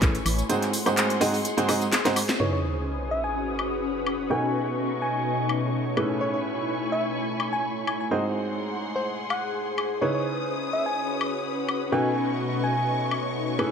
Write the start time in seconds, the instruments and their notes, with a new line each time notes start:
Already playing: ambient pad A3 E4 C#5, string section B4 G#5 B5 C#6
0.02 fm bass A1, upright piano A2 C#4 E4 G#4 A4 B4, kick, clap, closed hi-hat, tambourine
0.15 closed hi-hat, tambourine
0.26 fm bass A1, open hi-hat, tambourine, high woodblock
0.39 closed hi-hat, tambourine
0.49 upright piano G#2 C4 D#4 F#4 G#4 C5, string section G#4 F#5 C6, closed hi-hat, tambourine
0.62 clap, closed hi-hat, tambourine
0.73 ambient pad G#4, open hi-hat, tambourine
0.86 upright piano G#2 C4 D#4 F#4 G#4 C5, closed hi-hat, tambourine, high woodblock
0.97 clap, closed hi-hat, tambourine
1.10 ambient pad C5, closed hi-hat, tambourine
1.21 upright piano G#2 C4 D#4 F#4 G#4 D#5, open hi-hat, tambourine
1.34 open hi-hat, tambourine
1.45 closed hi-hat, tambourine
1.57 upright piano G#2 C4 D#4 F#4 G#4 C5, closed hi-hat, tambourine
1.68 upright piano G#2 C4 D#4 F#4 G#4 D#5, open hi-hat, tambourine, high woodblock
1.82 closed hi-hat, tambourine
1.92 snare, clap, closed hi-hat, tambourine
2.05 upright piano G#2 C4 D#4 F#4 G#4 C5, snare, closed hi-hat, tambourine
2.16 open hi-hat, tambourine, high woodblock
2.29 snare, closed hi-hat, tambourine
2.40 upright piano C#3 C#4 D#4 E4 G#4 B4, string section C#4 B4 D#6, ambient pad C#4, soft synth lead C#5, sub drop
2.53 soft synth lead C#5
2.57 ambient pad F#4
3.11 soft synth lead E5
3.24 ambient pad B4, soft synth lead G#5
3.59 high woodblock
4.07 high woodblock
4.30 ambient pad B2, upright piano B2 C#4 D#4 F#4 A4 B4, string section A3 B3 D#5 C#6, soft synth lead G#5
4.39 ambient pad D#4
4.57 ambient pad G#5
4.99 ambient pad C#5, soft synth lead G#5
5.49 high woodblock
5.97 upright piano A2 C#4 E4 G#4 A4 B4, ambient pad E4, string section G#5 B5 C#6, high woodblock
6.21 soft synth lead C#5
6.34 soft synth lead C#5
6.47 ambient pad A3
6.92 soft synth lead E5
7.40 high woodblock
7.53 soft synth lead G#5
7.87 soft synth lead G#5, high woodblock
8.00 soft synth lead G#5
8.11 upright piano G#2 C4 D#4 F#4 G#4 C5, string section G#4 F#5 C6, soft synth lead D#5
8.39 ambient pad G#4
8.96 soft synth lead C5
9.30 soft synth lead F#5, high woodblock
9.78 high woodblock
10.02 upright piano C#3 C#4 D#4 E4 G#4 B4, ambient pad C#4, string section C#4 B4 D#6, soft synth lead C#5
10.15 soft synth lead C#5
10.55 ambient pad B4
10.72 ambient pad F#4, soft synth lead E5
10.86 soft synth lead G#5
11.21 high woodblock
11.69 high woodblock
11.92 upright piano B2 C#4 D#4 F#4 A4 B4, ambient pad B2, string section A3 B3 D#5 C#6, soft synth lead G#5
12.47 ambient pad C#5
12.64 soft synth lead G#5
13.11 high woodblock
13.59 upright piano A2 C#4 E4 G#4 A4 B4, ambient pad E4, string section G#5 B5, high woodblock